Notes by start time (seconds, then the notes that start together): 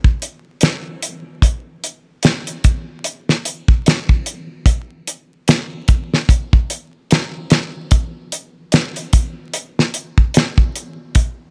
0.04 kick
0.22 closed hi-hat
0.61 snare, closed hi-hat
1.02 closed hi-hat
1.42 kick, closed hi-hat
1.84 closed hi-hat
2.23 snare, closed hi-hat
2.47 closed hi-hat
2.64 kick, closed hi-hat
3.04 closed hi-hat
3.29 snare
3.45 closed hi-hat
3.68 kick
3.86 snare, closed hi-hat
4.09 kick
4.26 closed hi-hat
4.66 kick, closed hi-hat
5.07 closed hi-hat
5.48 snare, closed hi-hat
5.88 kick, closed hi-hat
6.14 snare
6.29 kick, closed hi-hat
6.53 kick
6.70 closed hi-hat
7.11 snare, closed hi-hat
7.50 snare, closed hi-hat
7.91 kick, closed hi-hat
8.32 closed hi-hat
8.72 snare, closed hi-hat
8.96 closed hi-hat
9.13 kick, closed hi-hat
9.54 closed hi-hat
9.79 snare
9.94 closed hi-hat
10.18 kick
10.34 snare, closed hi-hat
10.58 kick
10.76 closed hi-hat
11.15 kick, closed hi-hat